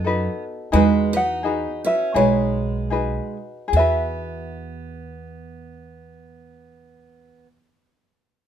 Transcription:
Already playing: upright bass F#2, steel-string acoustic guitar B3, ukulele D#5
0.04 ukulele D#4 F#4 A4 B4
0.72 upright bass E2, steel-string acoustic guitar G#3, ukulele D#4 F#4 G#4 B4
1.13 steel-string acoustic guitar D#4, ukulele D#4 F#4 B4 F#5
1.43 ukulele D#4 F#4 G#4 B4
1.84 steel-string acoustic guitar C#4, ukulele F#4 B4 E5
2.14 upright bass B1, steel-string acoustic guitar G#3, ukulele D#4 F#4 G#4 B4 C#5
2.90 ukulele D#4 F#4 G#4 B4
3.68 ukulele G#4
3.73 upright bass E2, steel-string acoustic guitar B3, ukulele F#4 E5
3.79 ukulele B4

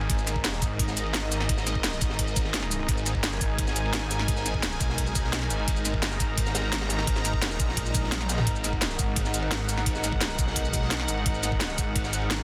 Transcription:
Already playing: analog synth pad G#3 D#4 A#4
0.01 ride
0.10 detuned saw bass G#1, analog synth pad D#5, kick, closed hi-hat, ride
0.18 shaker
0.27 snare, closed hi-hat, ride, shaker
0.36 kick
0.44 snare, closed hi-hat, ride
0.53 snare, shaker
0.62 detuned saw bass G#1, kick, closed hi-hat, ride, shaker
0.79 kick, closed hi-hat, ride
0.88 snare, shaker
0.97 closed hi-hat, ride, shaker
1.06 ride
1.13 snare, closed hi-hat, ride
1.32 snare, closed hi-hat, ride, shaker
1.40 snare
1.49 detuned saw bass G#1, kick, closed hi-hat, ride
1.57 snare, shaker
1.66 snare, closed hi-hat, ride, shaker
1.75 kick
1.84 snare, closed hi-hat, ride
1.93 shaker
2.01 detuned saw bass G#1, kick, closed hi-hat, ride, shaker
2.10 snare
2.19 kick, closed hi-hat, ride
2.28 shaker
2.36 kick, closed hi-hat, ride, shaker
2.45 snare
2.54 snare, closed hi-hat, ride
2.62 snare, ride
2.71 closed hi-hat, ride, shaker
2.80 ride
2.88 detuned saw bass G#1, analog synth pad G#5, kick, closed hi-hat, ride
2.97 shaker
3.06 snare, closed hi-hat, ride, shaker
3.15 kick
3.23 snare, closed hi-hat, ride
3.32 snare, shaker
3.41 detuned saw bass G#1, kick, closed hi-hat, ride, shaker
3.58 kick, closed hi-hat, ride
3.67 snare, shaker
3.76 closed hi-hat, ride, shaker
3.85 ride
3.93 snare, closed hi-hat, ride
4.11 snare, closed hi-hat, ride, shaker
4.19 snare
4.28 detuned saw bass G#1, kick, closed hi-hat, ride
4.36 snare, shaker
4.46 snare, closed hi-hat, ride, shaker
4.54 kick
4.63 snare, closed hi-hat, ride
4.72 shaker
4.80 detuned saw bass B1, kick, closed hi-hat, ride, shaker
4.90 snare
4.98 kick, closed hi-hat, ride
5.07 shaker
5.15 kick, closed hi-hat, ride, shaker
5.24 snare
5.33 detuned saw bass B1, snare, closed hi-hat, ride
5.41 snare, ride
5.50 detuned saw bass G#1, closed hi-hat, ride, shaker
5.59 ride
5.68 detuned saw bass G#1, analog synth pad A#5, kick, closed hi-hat, ride
5.76 shaker
5.85 snare, closed hi-hat, ride, shaker
5.94 kick
6.02 snare, closed hi-hat, ride
6.11 snare, shaker
6.20 detuned saw bass G#1, kick, closed hi-hat, ride, shaker
6.38 kick, closed hi-hat, ride
6.46 snare, shaker
6.55 snare, closed hi-hat, ride, shaker
6.72 snare, closed hi-hat
6.81 snare, ride
6.89 snare, closed hi-hat, ride, shaker
6.99 snare
7.07 detuned saw bass G#1, kick, closed hi-hat, ride
7.16 snare, shaker
7.25 snare, closed hi-hat, ride, shaker
7.33 kick
7.42 snare, closed hi-hat, ride
7.51 shaker
7.59 detuned saw bass A#1, kick, closed hi-hat, ride, shaker
7.69 snare
7.77 kick, closed hi-hat, ride
7.86 shaker
7.94 kick, closed hi-hat, ride, shaker
8.04 snare
8.12 snare, closed hi-hat, high tom, ride
8.21 snare, high tom, ride, shaker
8.29 snare, closed hi-hat, ride, shaker
8.38 snare, mid tom, ride
8.47 detuned saw bass G#1, analog synth pad F#5, kick, closed hi-hat, ride
8.56 shaker
8.64 snare, closed hi-hat, ride, shaker
8.73 kick
8.81 snare, closed hi-hat, ride
8.90 snare, shaker
8.99 detuned saw bass G#1, kick, closed hi-hat, ride, shaker
9.16 kick, closed hi-hat, ride
9.25 snare, shaker
9.34 closed hi-hat, ride, shaker
9.42 ride
9.51 snare, closed hi-hat
9.69 snare, closed hi-hat, ride, shaker
9.78 snare
9.86 detuned saw bass G#1, kick, closed hi-hat, ride
9.95 snare, shaker
10.04 snare, closed hi-hat, ride, shaker
10.12 kick
10.21 snare, closed hi-hat, ride
10.30 shaker
10.39 detuned saw bass B1, kick, closed hi-hat, ride, shaker
10.47 snare
10.56 kick, closed hi-hat, ride
10.65 shaker
10.74 kick, closed hi-hat, ride, shaker
10.82 snare
10.90 detuned saw bass B1, snare, closed hi-hat, ride
11.00 snare, ride
11.08 detuned saw bass G#1, closed hi-hat, ride, shaker
11.17 ride
11.26 detuned saw bass G#1, kick, closed hi-hat, ride
11.35 shaker
11.43 snare, closed hi-hat, ride, shaker
11.52 kick
11.60 snare, closed hi-hat, ride
11.69 snare, shaker
11.78 detuned saw bass G#1, kick, closed hi-hat, ride, shaker
11.95 kick, closed hi-hat, ride
12.04 snare, shaker
12.13 closed hi-hat, ride, shaker
12.21 ride
12.30 snare, closed hi-hat

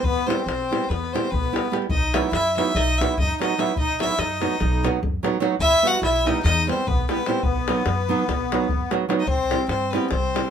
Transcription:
0.03 upright bass E2, accordion B3, fiddle B4, davul low
0.18 davul high
0.26 nylon-string guitar G3 B3 E4 G4, accordion C4, fiddle C5, davul high
0.40 davul high
0.45 upright bass B1, accordion C4, fiddle C5, davul high
0.61 davul high
0.71 nylon-string guitar G3 B3 E4 G4, davul high
0.89 upright bass E2, accordion B3, fiddle B4, davul high
1.04 davul high
1.13 nylon-string guitar G3 B3 E4 G4, accordion C4, fiddle C5, davul high
1.25 davul high
1.31 upright bass B1, accordion B3, fiddle B4, davul low
1.45 davul high
1.52 nylon-string guitar G3 B3 E4 G4, davul high
1.72 nylon-string guitar G3 B3 E4 G4, davul high
1.82 davul high
1.89 upright bass B1, accordion D#4, fiddle D#5, davul low
2.14 nylon-string guitar F#3 B3 D#4 F#4, accordion E4, fiddle E5, davul high
2.24 davul high
2.32 upright bass F#2, accordion E4, fiddle E5, davul high
2.56 nylon-string guitar F#3 B3 D#4 F#4, accordion E4, fiddle E5, davul high
2.68 davul high
2.75 upright bass B1, accordion D#4, fiddle D#5, davul high
2.98 nylon-string guitar F#3 B3 D#4 F#4, accordion E4, fiddle E5, davul high
3.18 upright bass F#2, accordion D#4, fiddle D#5, davul low
3.40 nylon-string guitar F#3 B3 D#4 F#4, accordion D#4, fiddle D#5, davul high
3.50 davul high
3.58 nylon-string guitar F#3 B3 D#4 F#4, accordion E4, fiddle E5, davul high
3.76 upright bass B1, accordion D#4, fiddle D#5, davul low
4.00 nylon-string guitar F#3 B3 D#4 F#4, accordion E4, fiddle E5, davul high
4.10 davul high
4.18 upright bass F#2, accordion D#4, fiddle D#5, davul high
4.40 nylon-string guitar F#3 B3 D#4 F#4, davul high
4.52 davul high
4.60 upright bass B1, davul high
4.84 nylon-string guitar F#3 B3 D#4 F#4, davul high
5.03 upright bass F#2, davul low
5.23 nylon-string guitar F#3 B3 D#4 F#4, davul high
5.34 davul high
5.40 nylon-string guitar F#3 B3 D#4 F#4, davul high
5.53 davul high
5.59 upright bass E2, accordion E4, fiddle E5, davul low
5.83 nylon-string guitar G3 B3 E4 G4, accordion F#4
5.87 fiddle F#5
5.94 davul high
6.02 upright bass B1, accordion E4, fiddle E5, davul high
6.25 nylon-string guitar G3 B3 E4 G4, accordion D#4, fiddle D#5, davul high
6.36 davul high
6.43 upright bass E2, accordion D#4, fiddle D#5, davul high
6.67 nylon-string guitar G3 B3 E4 G4, accordion C4, fiddle C5, davul high
6.86 upright bass B1, accordion B3, fiddle B4, davul low
7.07 nylon-string guitar G3 B3 E4 G4, accordion B3, fiddle B4, davul high
7.18 davul high
7.24 nylon-string guitar G3 B3, accordion C4, fiddle C5, davul high
7.29 nylon-string guitar E4 G4
7.36 davul high
7.42 upright bass B1, accordion B3, fiddle B4, davul low
7.56 davul high
7.68 nylon-string guitar F#3 B3 D#4 F#4, davul high
7.77 davul high
7.86 upright bass F#2, davul high
7.98 davul high
8.09 nylon-string guitar F#3 B3 D#4 F#4
8.19 davul high
8.28 upright bass B1, davul high, davul low
8.41 davul high
8.52 nylon-string guitar F#3 B3 D#4 F#4, davul high
8.69 upright bass F#2, davul low
8.91 nylon-string guitar F#3 B3 D#4 F#4, davul high
9.09 nylon-string guitar F#3 B3 D#4 F#4, davul high
9.20 accordion D#4, fiddle D#5
9.27 upright bass C2, accordion C4, fiddle C5, davul low
9.50 nylon-string guitar G3 C4 E4 G4, davul high
9.68 upright bass G2, accordion C4, fiddle C5, davul high
9.91 nylon-string guitar G3 C4 E4, accordion B3, fiddle B4, davul high
9.96 nylon-string guitar G4
10.10 upright bass C2, accordion C4, fiddle C5, davul high
10.35 nylon-string guitar G3 C4 E4 G4, davul high

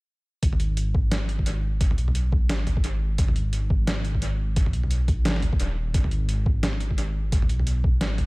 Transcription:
0.43 detuned saw bass G#1, kick, closed hi-hat
0.53 mid tom
0.60 closed hi-hat
0.77 closed hi-hat
0.94 kick
1.12 snare, closed hi-hat
1.29 closed hi-hat
1.39 kick
1.46 closed hi-hat
1.81 kick, closed hi-hat
1.91 mid tom
1.98 detuned saw bass B1, closed hi-hat
2.08 mid tom
2.15 closed hi-hat
2.32 kick
2.49 detuned saw bass G#1, snare, closed hi-hat
2.67 closed hi-hat, mid tom
2.77 kick
2.84 closed hi-hat
3.18 detuned saw bass G#1, kick, closed hi-hat
3.28 mid tom
3.36 closed hi-hat
3.53 closed hi-hat
3.70 kick
3.87 snare, closed hi-hat
4.05 closed hi-hat
4.15 kick
4.22 closed hi-hat
4.56 kick, closed hi-hat
4.66 mid tom
4.73 detuned saw bass B1, closed hi-hat
4.83 mid tom
4.91 closed hi-hat
5.08 kick, closed hi-hat
5.25 detuned saw bass G#1, snare, closed hi-hat
5.28 snare
5.31 snare
5.34 snare
5.36 snare
5.38 snare
5.40 snare, closed hi-hat, mid tom
5.53 kick
5.60 detuned saw bass D#1, closed hi-hat
5.94 detuned saw bass G#1, kick, closed hi-hat
6.04 mid tom
6.11 closed hi-hat
6.29 closed hi-hat
6.46 kick
6.63 snare, closed hi-hat
6.80 closed hi-hat
6.91 kick
6.98 closed hi-hat
7.32 kick, closed hi-hat
7.42 mid tom
7.49 detuned saw bass B1, closed hi-hat
7.59 mid tom
7.67 closed hi-hat
7.84 kick
8.01 detuned saw bass G#1, snare, closed hi-hat
8.18 closed hi-hat, mid tom

